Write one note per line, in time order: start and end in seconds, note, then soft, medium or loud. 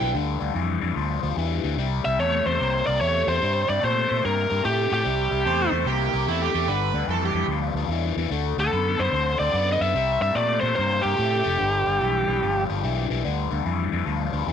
0.00 0.12 B1 medium
0.00 0.13 G2 medium
0.00 0.13 E3 medium
0.14 0.36 D2 loud
0.14 0.38 G2 medium
0.14 0.38 D3 medium
0.40 0.52 D2 medium
0.40 0.53 G2 medium
0.40 0.53 D3 medium
0.54 0.77 F2 medium
0.54 0.79 G2 medium
0.54 0.79 E3 loud
0.81 0.93 F2 medium
0.81 0.94 G2 medium
0.81 0.94 E3 medium
0.96 1.18 D2 medium
0.96 1.20 G2 medium
0.96 1.20 F3 medium
1.23 1.34 D2 medium
1.23 1.35 G2 medium
1.23 1.35 F3 medium
1.37 1.59 E2 medium
1.37 1.61 G2 medium
1.37 1.61 E3 medium
1.63 1.75 D2 medium
1.63 1.76 G2 medium
1.63 1.76 E3 medium
1.77 1.99 C2 medium
1.77 2.02 C3 medium
1.77 2.02 G3 medium
2.04 2.16 C2 medium
2.04 2.17 C3 medium
2.04 2.17 G3 medium
2.04 2.19 E5 medium
2.19 2.41 E2 medium
2.19 2.43 C3 medium
2.19 2.43 A3 medium
2.19 2.46 C#5 loud
2.45 2.57 E2 medium
2.45 2.58 C3 medium
2.45 2.58 A3 medium
2.45 2.86 C5 medium
2.59 2.82 C2 medium
2.59 2.83 C3 medium
2.59 2.83 A#3 medium
2.86 2.98 C2 medium
2.86 2.99 C3 medium
2.86 2.99 A#3 medium
2.86 2.99 D5 medium
3.01 3.23 E2 medium
3.01 3.24 C3 medium
3.01 3.25 A3 medium
3.01 3.28 C#5 loud
3.27 3.38 E2 medium
3.27 3.40 C3 medium
3.27 3.40 A3 medium
3.27 3.69 C5 loud
3.41 3.63 G2 medium
3.41 3.65 C3 medium
3.41 3.65 G3 medium
3.67 3.80 G2 medium
3.67 3.80 C3 medium
3.67 3.80 G3 medium
3.67 3.83 D5 medium
3.81 4.04 A#2 medium
3.81 4.06 C3 medium
3.81 4.06 A3 medium
3.81 4.21 C5 medium
4.08 4.21 A#2 medium
4.08 4.21 C3 medium
4.08 4.21 A3 medium
4.22 4.46 G2 medium
4.22 4.46 C3 medium
4.22 4.47 A#3 medium
4.22 4.62 A#4 medium
4.50 4.62 G2 medium
4.50 4.62 C3 medium
4.50 4.62 A#3 medium
4.64 4.86 A2 medium
4.64 4.88 C3 medium
4.64 4.88 A3 medium
4.64 4.92 G4 medium
4.90 5.02 A2 medium
4.90 5.02 C3 medium
4.90 5.03 A3 medium
4.94 5.70 G4 medium
5.04 5.27 C2 medium
5.04 5.28 C3 medium
5.04 5.29 G3 medium
5.30 5.43 C2 medium
5.30 5.43 C3 medium
5.30 5.44 G3 medium
5.45 5.67 E2 medium
5.45 5.69 C3 medium
5.45 5.69 A3 loud
5.45 5.85 C5 medium
5.72 5.83 E2 medium
5.72 5.84 C3 medium
5.72 5.84 A3 medium
5.85 6.07 C2 medium
5.85 6.10 C3 medium
5.85 6.10 A#3 medium
5.85 6.26 G4 medium
6.13 6.25 C2 medium
6.13 6.25 C3 medium
6.13 6.26 A#3 medium
6.27 6.49 E2 medium
6.27 6.51 C3 medium
6.27 6.51 A3 medium
6.27 6.41 E4 medium
6.42 6.68 G4 medium
6.54 6.65 E2 medium
6.54 6.67 C3 medium
6.54 6.67 A3 medium
6.67 6.89 G1 medium
6.67 6.92 G2 medium
6.67 6.92 D3 medium
6.67 7.07 B4 medium
6.93 7.05 D2 medium
6.93 7.07 G2 medium
6.93 7.07 D3 medium
7.07 7.30 F2 medium
7.07 7.32 G2 medium
7.07 7.32 E3 loud
7.07 7.23 A4 medium
7.25 7.45 G4 medium
7.34 7.46 F2 medium
7.34 7.48 G2 medium
7.34 7.48 E3 medium
7.48 7.70 D2 medium
7.48 7.74 G2 medium
7.48 7.74 F3 medium
7.74 7.86 D2 medium
7.74 7.89 G2 medium
7.74 7.89 F3 medium
7.88 8.11 E2 medium
7.88 8.15 G2 medium
7.88 8.15 E3 medium
8.16 8.28 E2 medium
8.16 8.30 G2 medium
8.16 8.30 E3 medium
8.30 8.53 D2 medium
8.30 8.55 D3 medium
8.30 8.55 A3 medium
8.57 8.69 D2 medium
8.57 8.71 D3 medium
8.57 8.71 A3 medium
8.57 9.01 A4 medium
8.72 8.94 F#2 medium
8.72 8.96 D3 medium
8.72 8.97 B3 medium
8.99 9.11 F#2 medium
8.99 9.12 D3 medium
8.99 9.12 B3 medium
8.99 9.39 C5 medium
9.13 9.35 D2 medium
9.13 9.37 D3 medium
9.13 9.38 C4 medium
9.39 9.51 D2 medium
9.39 9.53 D3 medium
9.39 9.53 C4 medium
9.39 9.69 D5 medium
9.53 9.76 F#2 medium
9.53 9.78 D3 medium
9.53 9.79 B3 medium
9.72 9.81 D#5 medium
9.81 9.92 F#2 medium
9.81 9.94 D3 medium
9.81 9.94 B3 medium
9.81 10.21 E5 loud
9.94 10.16 C2 medium
9.94 10.19 C3 medium
9.94 10.20 G3 medium
10.21 10.33 G2 medium
10.21 10.34 C3 medium
10.21 10.35 G3 medium
10.21 10.37 E5 loud
10.35 10.57 A#2 medium
10.35 10.60 C3 medium
10.35 10.60 A3 loud
10.35 10.60 D5 loud
10.61 10.74 A#2 medium
10.61 10.74 C3 medium
10.61 10.75 A3 medium
10.61 10.74 C5 medium
10.75 11.00 G2 medium
10.75 11.00 C3 medium
10.75 11.01 A#3 medium
10.75 11.01 C5 medium
11.02 11.16 G2 medium
11.02 11.15 C3 medium
11.02 11.16 A#3 medium
11.02 12.63 G4 medium
11.16 11.41 A2 medium
11.16 11.42 C3 medium
11.16 11.42 A3 loud
11.43 11.57 F1 medium
11.43 11.57 C3 medium
11.43 11.57 A3 medium
11.57 11.82 G1 loud
11.57 11.83 G2 medium
11.57 11.83 D3 medium
11.86 11.98 G1 medium
11.86 11.99 G2 medium
11.86 11.99 D3 medium
12.00 12.23 B1 medium
12.00 12.25 G2 medium
12.00 12.25 E3 medium
12.27 12.39 B1 medium
12.27 12.40 G2 medium
12.27 12.41 E3 medium
12.42 12.64 G1 medium
12.42 12.66 G2 medium
12.42 12.66 F3 medium
12.69 12.81 G1 medium
12.69 12.82 G2 medium
12.69 12.82 F3 medium
12.83 13.05 B1 medium
12.83 13.07 G2 medium
12.83 13.08 E3 medium
13.10 13.22 B1 medium
13.10 13.23 G2 medium
13.10 13.23 E3 medium
13.24 13.47 D2 medium
13.24 13.48 G2 medium
13.24 13.49 D3 medium
13.51 13.63 D2 medium
13.51 13.64 G2 medium
13.51 13.64 D3 medium
13.65 13.87 F2 medium
13.65 13.89 G2 medium
13.65 13.90 E3 loud
13.92 14.04 F2 medium
13.92 14.04 G2 medium
13.92 14.05 E3 medium
14.05 14.29 D2 medium
14.05 14.30 G2 medium
14.05 14.31 F3 medium
14.32 14.45 D2 medium
14.32 14.46 G2 medium
14.32 14.46 F3 medium
14.47 14.53 E2 medium
14.47 14.53 G2 medium
14.47 14.53 E3 medium